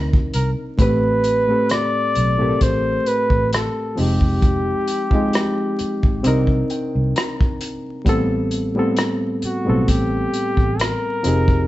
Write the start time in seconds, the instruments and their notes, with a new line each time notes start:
Already playing: fingered electric bass D2, reed electric piano C3 C4 D4 D#4 A#4
0.13 kick
0.34 fingered electric bass C2, muted trumpet A#4, closed hi-hat
0.77 fingered electric bass A1, reed electric piano A2 A3 C4 G4, muted trumpet B4, kick, closed hi-hat
0.82 reed electric piano B4
1.24 closed hi-hat
1.47 reed electric piano A2 A3 C4 G4
1.52 reed electric piano A4
1.69 muted trumpet D5, cross-stick, closed hi-hat
2.15 fingered electric bass B1, closed hi-hat
2.38 reed electric piano A2 A3 C4 G4
2.42 reed electric piano A#4
2.49 reed electric piano A4
2.61 fingered electric bass A1, muted trumpet C5, kick, closed hi-hat
3.06 muted trumpet B4, closed hi-hat
3.30 fingered electric bass A1, kick
3.53 muted trumpet A4, cross-stick, closed hi-hat
3.95 fingered electric bass F1, reed electric piano F3 C4 D#4 G4, muted trumpet G4, open hi-hat
4.00 reed electric piano G#3
4.21 kick
4.42 kick, closed hi-hat
4.88 closed hi-hat
5.11 reed electric piano F3 C4 D#4 G4, kick
5.15 reed electric piano G#3
5.33 cross-stick, closed hi-hat
5.79 muted fingered electric bass stroke, closed hi-hat
6.03 fingered electric bass G#1, kick
6.23 fingered electric bass C2, reed electric piano C3 C4 D4 D#4, closed hi-hat
6.27 reed electric piano A#4
6.47 kick
6.70 reed electric piano G5, closed hi-hat
6.95 fingered electric bass C2
7.16 reed electric piano A#5, cross-stick, closed hi-hat
7.41 kick
7.61 closed hi-hat
8.05 fingered electric bass A1, reed electric piano A2 G3 B3 C4, kick, closed hi-hat
8.09 reed electric piano A4
8.51 closed hi-hat
8.74 reed electric piano A2 G3 B3 C4
8.79 reed electric piano A4
8.97 cross-stick, closed hi-hat
9.42 muted trumpet F#4, muted fingered electric bass stroke, closed hi-hat
9.65 fingered electric bass B1, reed electric piano A2 G3 B3 C4
9.70 reed electric piano A4
9.88 fingered electric bass A1, muted trumpet G4, kick, closed hi-hat
10.34 closed hi-hat
10.57 fingered electric bass A1, kick
10.80 muted trumpet A#4, cross-stick, closed hi-hat
11.23 fingered electric bass F1, reed electric piano F3 C4 D#4 G4, closed hi-hat
11.28 reed electric piano G#4
11.48 kick